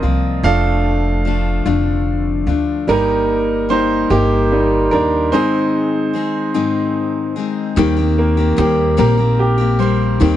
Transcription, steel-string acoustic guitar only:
0.03 F3 A#3 C4 F4
0.44 F2 D3 F3 A3 D4 F4
1.25 F3 A3 D4 F4
1.66 F2 D3 F3 A3 D4 F4
2.47 F3 A3 D4 F4
2.88 G3 A#3 D#4 G4
3.69 G3 A#3 D#4 G4
4.10 G3 A#3 D#4 G4
4.91 A#3 D#4 G4
5.32 G#2 D#3 G#3 C4 D#4 G#4
6.14 G#3 C4 D#4 G#4
6.54 G#2 D#3 G#3 C4 D#4 G#4
7.36 G#3 C4 D#4 G#4
7.76 D#3 G3 A#3 C4 G4
7.96 A#3 C4 G4
8.37 A#3 C4 G4
8.56 G3 A#3 C4 G4
8.97 D#3 G3 A#3 C4 G4
9.17 A#3 C4 G4
9.58 A#3 C4 G4
9.79 G3 A#3 C4 G4
10.20 D#3 G3 A#3 C4 G4

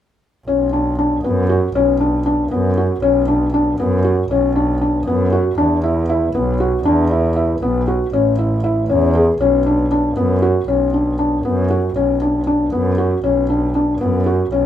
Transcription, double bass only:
0.47 B1
1.23 F#2
1.75 B1
2.51 F#2
3.02 B1
3.79 F#2
4.30 B1
5.06 F#2
5.58 E2
6.34 B1
6.85 E2
7.61 B1
8.13 A1
8.89 E2
9.40 B1
10.16 F#2
10.68 B1
11.45 F#2
11.96 B1
12.73 F#2
13.24 B1
14.01 F#2
14.52 B1

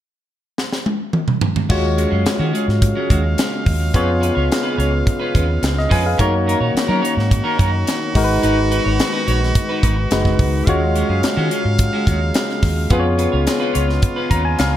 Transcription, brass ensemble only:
1.70 C#3 F#3 G#3 F5
3.95 C#3 B3
6.20 D#3 A#3 C#4 F#4
8.16 G#3 B3
10.66 C#3 F#3 F5
12.91 B3 F4

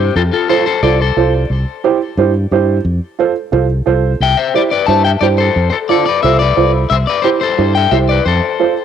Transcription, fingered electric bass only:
0.16 F2
0.83 C2
1.17 C2
1.50 C2
2.17 G2
2.51 G2
2.85 F2
3.53 C2
3.87 C2
4.20 C2
4.88 G2
5.21 G2
5.56 F2
6.24 C2
6.57 C2
6.91 C2
7.59 G2
7.92 C2
8.26 F2

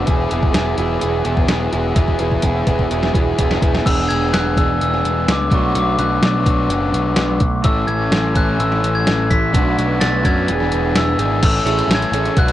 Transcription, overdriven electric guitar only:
0.05 E3 B3 E4 G#4
0.29 E3 B3 E4 G#4
0.53 E3 B3 E4 G#4
0.76 E3 B3 E4 G#4
0.99 E3 B3 E4 G#4
1.24 E3 B3 E4 G#4
1.48 E3 B3 E4 G#4
1.72 E3 B3 E4 G#4
1.96 E3 B3 E4 G#4
2.19 E3 B3 E4 G#4
2.44 E3 B3 E4 G#4
2.67 E3 B3 E4 G#4
2.89 E3 B3 E4 G#4
3.13 E3 B3 E4 G#4
3.39 E3 B3 E4 G#4
3.61 E3 B3 E4 G#4
3.86 B3 D4 G#4
4.58 B3 D4 G#4
5.50 F#3 B3 D4
5.54 F#4
6.22 F#3 B3 D4 F#4
7.65 E3 A3 C#4 A4
8.35 E3 A3 C#4 A4
9.53 F#3 B3 D4 F#4
10.23 B3 D4 F#4
10.27 F#3
10.48 E3 B3 D4 G#4
11.19 E3 B3 D4 G#4
11.43 E3 A3 C#4 A4
11.66 A3 C#4 A4
11.90 E3 A3 C#4 A4
12.12 A3 C#4 A4
12.37 F#3 B3 D4 F#4

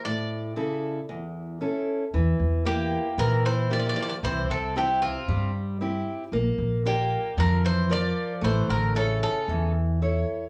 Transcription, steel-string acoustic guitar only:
0.05 A2
0.56 C#3 E4 A4
1.09 E2
1.61 C#4 E4 A4
2.14 E3
2.65 A#3 E4 G4
3.18 E3
3.70 A#3 E4 G4
4.24 C3
4.76 C4 E4 G4
5.28 G3
5.81 C4 E4 G4
6.33 A#3
6.85 F4 A#4 D5
7.38 F3
7.90 F4 A#4 D5
8.42 A3
8.95 E4 A4 C#5
9.49 E3
10.02 E4 A4 C#5

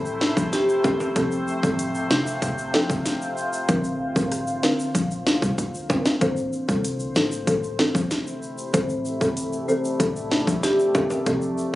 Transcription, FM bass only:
Already playing: A1
0.37 A#1
1.16 F1
1.63 A1
2.11 F1
2.42 F1
2.90 G1
3.69 A#1
4.16 A1
4.95 A#1
5.42 C2
6.21 A1
6.69 C2
7.16 A1
7.47 A1
7.95 A#1
8.74 A1
9.21 G1
10.00 A1
10.47 A#1
11.27 F1

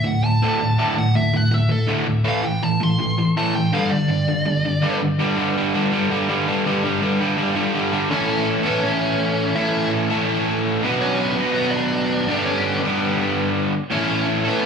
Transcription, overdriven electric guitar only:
0.04 D2 A2
0.23 D2 A2
0.42 D2 A2 D3
0.60 D2 A2
0.78 D2 A2 D3
0.97 D2 A2
1.15 D2 A2
1.33 D2 A2
1.51 D2 A2
1.69 D2 A2
1.87 D2 A2 D3
2.06 D2 A2
2.24 A2 E3 A3
2.42 A2 E3
2.63 A2 E3
2.80 A2 E3
2.99 A2 E3
3.18 A2 E3
3.37 A2 E3 A3
3.55 A2 E3
3.73 G2 D3 G3
3.92 G2 D3
4.09 G2 D3
4.28 G2 D3
4.45 G2 D3
4.65 G2 D3
4.82 G2 D3 G3
5.02 G2 D3
5.19 G2 D3 G3
5.37 G2 D3 G3
5.55 G2 D3 G3
5.74 G2 D3 G3
5.91 G2 D3 G3
6.10 G2 D3 G3
6.29 G2 D3 G3
6.47 G2 D3 G3
6.65 G2 D3 G3
6.83 G2 D3 G3
7.02 G2 D3 G3
7.20 G2 D3 G3
7.38 G2 D3 G3
7.56 G2 D3 G3
7.74 G2 D3 G3
7.93 G2 D3 G3
8.09 A2 E3 A3 C#4 E4 A4
8.63 A2 E3 A3 C#4 E4 A4
9.55 A2 E3 A3 C#4 E4 A4
10.10 A2 E3 A3 C#4 E4 A4
10.82 B2 F#3 B3 D4 F#4 B4
11.36 B2 F#3 B3 D4 F#4 B4
12.27 G2 D3 G3 B3 D4 G4
12.82 G2 D3 G3 B3 D4 G4
13.91 A2 E3 A3 C#4 E4 A4
14.45 A2 E3 A3 C#4 E4 A4

